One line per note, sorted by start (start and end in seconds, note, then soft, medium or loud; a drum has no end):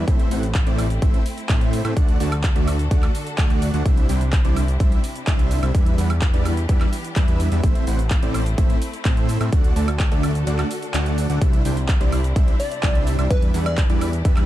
0.08 0.29 A1 loud
0.08 1.95 A3 medium
0.08 0.28 A3 medium
0.08 1.95 C4 medium
0.08 0.28 C4 medium
0.08 1.95 E4 medium
0.08 0.28 E4 medium
0.08 0.28 C5 medium
0.08 0.28 E5 medium
0.08 kick loud
0.08 closed hi-hat medium
0.08 cabasa soft
0.19 closed hi-hat soft
0.19 cabasa soft
0.31 0.64 A1 loud
0.31 0.43 A3 loud
0.31 0.43 C4 medium
0.31 0.43 E4 medium
0.31 0.43 C5 medium
0.31 0.43 F#5 loud
0.31 open hi-hat loud
0.31 cabasa medium
0.43 closed hi-hat soft
0.43 cabasa soft
0.55 kick loud
0.55 clap loud
0.55 closed hi-hat medium
0.55 cabasa soft
0.67 1.00 A1 loud
0.67 0.86 A3 loud
0.67 0.86 C4 medium
0.67 0.86 E4 medium
0.67 0.86 C5 medium
0.67 0.86 D5 loud
0.67 closed hi-hat soft
0.67 cabasa soft
0.79 open hi-hat loud
0.79 cabasa medium
0.79 high woodblock medium
0.90 closed hi-hat soft
0.90 cabasa soft
1.02 1.19 A1 loud
1.02 1.22 A3 medium
1.02 1.22 C4 medium
1.02 1.22 E4 medium
1.02 1.22 C5 medium
1.02 1.22 E5 loud
1.02 kick loud
1.02 closed hi-hat medium
1.02 cabasa soft
1.14 closed hi-hat soft
1.14 cabasa soft
1.26 open hi-hat loud
1.26 cabasa medium
1.38 closed hi-hat soft
1.38 cabasa soft
1.49 1.82 A2 medium
1.49 1.82 A3 medium
1.49 1.82 C4 medium
1.49 1.82 E4 medium
1.49 1.82 C5 medium
1.49 1.82 E5 loud
1.49 kick loud
1.49 clap loud
1.49 closed hi-hat medium
1.49 cabasa soft
1.61 closed hi-hat soft
1.61 cabasa soft
1.73 open hi-hat loud
1.73 cabasa medium
1.85 1.94 A2 loud
1.85 1.94 A3 medium
1.85 1.94 C4 medium
1.85 1.94 E4 medium
1.85 1.94 C5 medium
1.85 1.94 E5 loud
1.85 closed hi-hat soft
1.85 cabasa soft
1.85 high woodblock medium
1.97 2.18 D2 loud
1.97 3.84 D3 medium
1.97 2.17 A3 medium
1.97 2.17 D4 medium
1.97 5.71 D4 medium
1.97 2.17 F#4 medium
1.97 3.84 F#4 medium
1.97 3.84 A4 loud
1.97 2.17 D5 medium
1.97 2.17 F#5 medium
1.97 kick loud
1.97 closed hi-hat medium
1.97 cabasa soft
2.08 closed hi-hat soft
2.08 cabasa soft
2.20 2.53 D2 loud
2.20 2.32 A3 loud
2.20 2.32 D4 medium
2.20 2.32 F#4 medium
2.20 2.32 D5 medium
2.20 2.32 A5 loud
2.20 open hi-hat loud
2.20 cabasa medium
2.32 closed hi-hat soft
2.32 cabasa soft
2.32 high woodblock medium
2.44 kick loud
2.44 clap loud
2.44 closed hi-hat medium
2.44 cabasa soft
2.56 2.89 D2 loud
2.56 2.75 A3 loud
2.56 2.75 D4 medium
2.56 2.75 F#4 medium
2.56 2.75 D5 medium
2.56 2.75 E5 loud
2.56 closed hi-hat soft
2.56 cabasa soft
2.68 open hi-hat loud
2.68 cabasa medium
2.68 high woodblock medium
2.79 closed hi-hat soft
2.79 cabasa soft
2.91 3.08 D2 loud
2.91 3.11 A3 medium
2.91 3.11 D4 medium
2.91 3.11 F#4 medium
2.91 3.11 D5 medium
2.91 3.11 F#5 loud
2.91 kick loud
2.91 closed hi-hat medium
2.91 cabasa soft
3.03 clap soft
3.03 closed hi-hat soft
3.03 cabasa soft
3.03 high woodblock medium
3.15 open hi-hat loud
3.15 cabasa medium
3.27 closed hi-hat soft
3.27 cabasa soft
3.38 3.71 D2 loud
3.38 3.71 A3 medium
3.38 3.71 D4 medium
3.38 3.71 F#4 medium
3.38 3.71 D5 medium
3.38 3.71 F#5 loud
3.38 kick loud
3.38 clap loud
3.38 closed hi-hat medium
3.38 cabasa soft
3.50 closed hi-hat soft
3.50 cabasa soft
3.62 open hi-hat medium
3.62 cabasa medium
3.74 3.83 D2 loud
3.74 3.83 A3 medium
3.74 3.83 D4 medium
3.74 3.83 F#4 medium
3.74 3.83 D5 medium
3.74 3.83 F#5 loud
3.74 closed hi-hat soft
3.74 cabasa soft
3.86 4.07 C2 loud
3.86 5.73 C3 medium
3.86 4.06 G3 medium
3.86 5.73 C4 medium
3.86 4.06 D4 medium
3.86 5.73 E4 medium
3.86 4.06 E4 medium
3.86 4.06 C5 medium
3.86 4.06 E5 loud
3.86 kick loud
3.86 closed hi-hat medium
3.86 cabasa soft
3.97 closed hi-hat soft
3.97 cabasa soft
4.09 4.42 C2 loud
4.09 4.21 G3 loud
4.09 4.21 D4 medium
4.09 4.21 E4 medium
4.09 4.21 C5 medium
4.09 4.21 G5 loud
4.09 open hi-hat loud
4.09 cabasa medium
4.21 closed hi-hat soft
4.21 cabasa soft
4.33 kick loud
4.33 clap loud
4.33 closed hi-hat medium
4.33 cabasa soft
4.45 4.78 C2 loud
4.45 4.64 G3 loud
4.45 4.64 D4 medium
4.45 4.64 E4 medium
4.45 4.64 C5 medium
4.45 4.64 D5 loud
4.45 closed hi-hat soft
4.45 cabasa soft
4.56 open hi-hat medium
4.56 cabasa medium
4.56 high woodblock medium
4.68 closed hi-hat soft
4.68 cabasa soft
4.80 4.97 C2 loud
4.80 5.00 G3 medium
4.80 5.00 D4 medium
4.80 5.00 E4 medium
4.80 5.00 C5 medium
4.80 5.00 E5 loud
4.80 kick loud
4.80 closed hi-hat medium
4.80 cabasa soft
4.92 closed hi-hat soft
4.92 cabasa soft
5.04 open hi-hat loud
5.04 cabasa medium
5.16 closed hi-hat soft
5.16 cabasa soft
5.27 5.60 C2 loud
5.27 5.60 G3 loud
5.27 5.60 D4 medium
5.27 5.60 E4 medium
5.27 5.60 C5 medium
5.27 5.60 E5 loud
5.27 kick loud
5.27 clap loud
5.27 closed hi-hat medium
5.27 cabasa soft
5.39 closed hi-hat soft
5.39 cabasa soft
5.51 open hi-hat medium
5.51 cabasa medium
5.63 5.72 C2 loud
5.63 5.72 G3 medium
5.63 5.72 D4 medium
5.63 5.72 E4 medium
5.63 5.72 C5 medium
5.63 5.72 E5 medium
5.63 closed hi-hat soft
5.63 cabasa soft
5.63 high woodblock medium
5.75 5.96 E2 loud
5.75 7.62 E3 medium
5.75 5.95 G3 medium
5.75 7.62 B3 medium
5.75 5.95 D4 medium
5.75 7.62 D4 medium
5.75 5.95 E4 medium
5.75 7.62 G4 loud
5.75 5.95 B4 medium
5.75 5.95 E5 medium
5.75 kick loud
5.75 closed hi-hat loud
5.75 cabasa soft
5.86 closed hi-hat soft
5.86 cabasa soft
5.98 6.31 E2 medium
5.98 6.10 G3 loud
5.98 6.10 D4 medium
5.98 6.10 E4 medium
5.98 6.10 B4 medium
5.98 6.10 F#5 loud
5.98 open hi-hat loud
5.98 cabasa medium
6.10 closed hi-hat soft
6.10 cabasa soft
6.10 high woodblock medium
6.22 kick loud
6.22 clap loud
6.22 closed hi-hat medium
6.22 cabasa soft
6.34 6.67 E2 loud
6.34 6.53 G3 loud
6.34 6.53 D4 medium
6.34 6.53 E4 medium
6.34 6.53 B4 medium
6.34 6.53 D5 loud
6.34 closed hi-hat soft
6.34 cabasa soft
6.45 open hi-hat medium
6.45 cabasa medium
6.45 high woodblock medium
6.57 closed hi-hat soft
6.57 cabasa soft
6.69 6.86 E2 loud
6.69 6.89 G3 loud
6.69 6.89 D4 medium
6.69 6.89 E4 medium
6.69 6.89 B4 medium
6.69 6.89 E5 loud
6.69 kick loud
6.69 closed hi-hat loud
6.69 cabasa soft
6.81 clap soft
6.81 closed hi-hat soft
6.81 cabasa soft
6.81 high woodblock medium
6.93 open hi-hat loud
6.93 cabasa medium
7.04 closed hi-hat soft
7.04 cabasa soft
7.16 7.49 E2 loud
7.16 7.49 G3 medium
7.16 7.49 D4 medium
7.16 7.49 E4 medium
7.16 7.49 B4 medium
7.16 7.49 E5 loud
7.16 kick loud
7.16 clap loud
7.16 closed hi-hat medium
7.16 cabasa soft
7.28 closed hi-hat soft
7.28 cabasa soft
7.40 open hi-hat medium
7.40 cabasa medium
7.52 7.61 E2 loud
7.52 7.61 G3 medium
7.52 7.61 D4 medium
7.52 7.61 E4 medium
7.52 7.61 B4 medium
7.52 7.61 E5 loud
7.52 closed hi-hat soft
7.52 cabasa soft
7.63 7.85 A1 loud
7.63 9.51 A3 medium
7.63 7.84 A3 medium
7.63 9.51 C4 medium
7.63 7.84 C4 medium
7.63 9.51 E4 loud
7.63 7.84 E4 medium
7.63 7.84 C5 medium
7.63 7.84 E5 medium
7.63 kick loud
7.63 closed hi-hat loud
7.63 cabasa soft
7.75 closed hi-hat soft
7.75 cabasa soft
7.87 8.20 A1 loud
7.87 7.99 A3 medium
7.87 7.99 C4 medium
7.87 7.99 E4 medium
7.87 7.99 C5 medium
7.87 7.99 F#5 loud
7.87 open hi-hat loud
7.87 cabasa medium
7.99 closed hi-hat soft
7.99 cabasa soft
8.11 kick loud
8.11 clap loud
8.11 closed hi-hat loud
8.11 cabasa soft
8.23 8.56 A1 loud
8.23 8.42 A3 loud
8.23 8.42 C4 medium
8.23 8.42 E4 medium
8.23 8.42 C5 medium
8.23 8.42 D5 loud
8.23 closed hi-hat soft
8.23 cabasa soft
8.34 open hi-hat medium
8.34 cabasa medium
8.34 high woodblock medium
8.46 closed hi-hat soft
8.46 cabasa soft
8.58 8.75 A1 loud
8.58 8.78 A3 medium
8.58 8.78 C4 medium
8.58 8.78 E4 medium
8.58 8.78 C5 medium
8.58 8.78 E5 loud
8.58 kick loud
8.58 closed hi-hat loud
8.58 cabasa soft
8.70 closed hi-hat soft
8.70 cabasa soft
8.82 open hi-hat loud
8.82 cabasa medium
8.93 closed hi-hat soft
8.93 cabasa soft
9.05 9.38 A2 loud
9.05 9.38 A3 medium
9.05 9.38 C4 medium
9.05 9.38 E4 medium
9.05 9.38 C5 medium
9.05 9.38 E5 loud
9.05 kick loud
9.05 clap loud
9.05 closed hi-hat medium
9.05 cabasa soft
9.17 closed hi-hat soft
9.17 cabasa soft
9.29 open hi-hat medium
9.29 cabasa medium
9.41 9.50 A2 loud
9.41 9.50 A3 medium
9.41 9.50 C4 medium
9.41 9.50 E4 medium
9.41 9.50 C5 medium
9.41 9.50 E5 medium
9.41 closed hi-hat soft
9.41 cabasa soft
9.41 high woodblock medium
9.52 9.74 D2 loud
9.52 11.40 D3 medium
9.52 9.73 A3 medium
9.52 14.46 D4 medium
9.52 9.73 D4 medium
9.52 11.40 F#4 medium
9.52 9.73 F#4 medium
9.52 11.40 A4 medium
9.52 9.73 D5 medium
9.52 9.73 F#5 loud
9.52 kick loud
9.52 closed hi-hat loud
9.52 cabasa soft
9.64 closed hi-hat soft
9.64 cabasa soft
9.76 10.09 D2 loud
9.76 9.88 A3 medium
9.76 9.88 D4 medium
9.76 9.88 F#4 medium
9.76 9.88 D5 medium
9.76 9.88 A5 loud
9.76 open hi-hat loud
9.76 cabasa medium
9.88 closed hi-hat soft
9.88 cabasa soft
9.88 high woodblock medium
10.00 kick loud
10.00 clap loud
10.00 closed hi-hat medium
10.00 cabasa soft
10.12 10.45 D2 loud
10.12 10.31 A3 loud
10.12 10.31 D4 medium
10.12 10.31 F#4 medium
10.12 10.31 D5 medium
10.12 10.31 E5 loud
10.12 closed hi-hat soft
10.12 cabasa soft
10.23 open hi-hat medium
10.23 cabasa medium
10.23 high woodblock medium
10.35 closed hi-hat soft
10.35 cabasa soft
10.47 10.64 D2 loud
10.47 10.67 A3 medium
10.47 10.67 D4 medium
10.47 10.67 F#4 medium
10.47 10.67 D5 medium
10.47 10.67 F#5 loud
10.47 closed hi-hat loud
10.47 cabasa soft
10.59 clap soft
10.59 closed hi-hat soft
10.59 cabasa soft
10.59 high woodblock medium
10.71 open hi-hat loud
10.71 cabasa medium
10.82 closed hi-hat soft
10.82 cabasa soft
10.94 11.27 D2 loud
10.94 11.27 A3 medium
10.94 11.27 D4 medium
10.94 11.27 F#4 medium
10.94 11.27 D5 medium
10.94 11.27 F#5 loud
10.94 clap loud
10.94 closed hi-hat loud
10.94 cabasa soft
11.06 closed hi-hat soft
11.06 cabasa soft
11.18 open hi-hat medium
11.18 cabasa medium
11.30 11.39 D2 loud
11.30 11.39 A3 medium
11.30 11.39 D4 medium
11.30 11.39 F#4 medium
11.30 11.39 D5 medium
11.30 11.39 F#5 loud
11.30 closed hi-hat soft
11.30 cabasa soft
11.41 11.63 C2 loud
11.41 13.29 C3 medium
11.41 11.62 G3 medium
11.41 13.29 C4 medium
11.41 11.62 D4 medium
11.41 11.62 E4 medium
11.41 13.29 E4 medium
11.41 11.62 C5 medium
11.41 11.62 E5 medium
11.41 kick loud
11.41 closed hi-hat loud
11.41 cabasa soft
11.53 closed hi-hat soft
11.53 cabasa soft
11.65 11.98 C2 medium
11.65 11.77 G3 medium
11.65 11.77 D4 medium
11.65 11.77 E4 medium
11.65 11.77 C5 medium
11.65 11.77 G5 loud
11.65 open hi-hat loud
11.65 cabasa medium
11.77 closed hi-hat soft
11.77 cabasa soft
11.89 kick loud
11.89 clap loud
11.89 closed hi-hat loud
11.89 cabasa soft
12.01 12.34 C2 loud
12.01 12.20 G3 loud
12.01 12.20 D4 medium
12.01 12.20 E4 medium
12.01 12.20 C5 medium
12.01 12.20 D5 loud
12.01 closed hi-hat soft
12.01 cabasa soft
12.12 open hi-hat medium
12.12 cabasa medium
12.12 high woodblock medium
12.24 closed hi-hat soft
12.24 cabasa soft
12.36 12.53 C2 loud
12.36 12.56 G3 medium
12.36 12.56 D4 medium
12.36 12.56 E4 medium
12.36 12.56 C5 medium
12.36 12.56 E5 loud
12.36 kick loud
12.36 closed hi-hat loud
12.36 cabasa soft
12.48 closed hi-hat soft
12.48 cabasa soft
12.60 13.26 D5 loud
12.60 open hi-hat loud
12.60 cabasa medium
12.72 closed hi-hat soft
12.72 cabasa soft
12.83 13.16 C2 loud
12.83 13.16 G3 medium
12.83 13.16 D4 medium
12.83 13.16 E4 medium
12.83 13.16 C5 medium
12.83 13.16 E5 loud
12.83 kick loud
12.83 clap loud
12.83 closed hi-hat loud
12.83 cabasa soft
12.95 closed hi-hat soft
12.95 cabasa soft
13.07 open hi-hat loud
13.07 cabasa medium
13.19 13.28 C2 loud
13.19 13.28 G3 medium
13.19 13.28 D4 medium
13.19 13.28 E4 medium
13.19 13.28 C5 medium
13.19 13.28 E5 loud
13.19 closed hi-hat soft
13.19 cabasa soft
13.19 high woodblock medium
13.30 13.52 E2 loud
13.30 14.46 E3 medium
13.30 13.51 G3 medium
13.30 14.46 B3 medium
13.30 13.51 D4 medium
13.30 13.51 E4 medium
13.30 14.46 G4 medium
13.30 13.51 B4 medium
13.30 13.44 B4 loud
13.30 13.51 E5 loud
13.30 kick loud
13.30 closed hi-hat loud
13.30 cabasa soft
13.42 closed hi-hat soft
13.42 cabasa soft
13.54 13.87 E2 loud
13.54 13.66 G3 loud
13.54 13.66 D4 medium
13.54 13.66 E4 medium
13.54 13.66 B4 medium
13.54 13.66 F#5 loud
13.54 open hi-hat loud
13.54 cabasa medium
13.66 13.80 D5 loud
13.66 closed hi-hat soft
13.66 cabasa soft
13.66 high woodblock medium
13.78 kick loud
13.78 clap loud
13.78 closed hi-hat medium
13.78 cabasa soft
13.90 14.23 E2 loud
13.90 14.09 G3 loud
13.90 14.09 D4 medium
13.90 14.09 E4 medium
13.90 14.09 B4 medium
13.90 14.09 D5 loud
13.90 closed hi-hat soft
13.90 cabasa soft
14.01 open hi-hat loud
14.01 cabasa medium
14.01 high woodblock medium
14.13 closed hi-hat soft
14.13 cabasa soft
14.25 14.42 E2 loud
14.25 14.45 G3 medium
14.25 14.45 D4 medium
14.25 14.45 E4 medium
14.25 14.45 B4 medium
14.25 14.45 E5 loud
14.25 kick loud
14.25 closed hi-hat loud
14.25 cabasa soft
14.37 clap soft
14.37 closed hi-hat soft
14.37 cabasa soft
14.37 high woodblock medium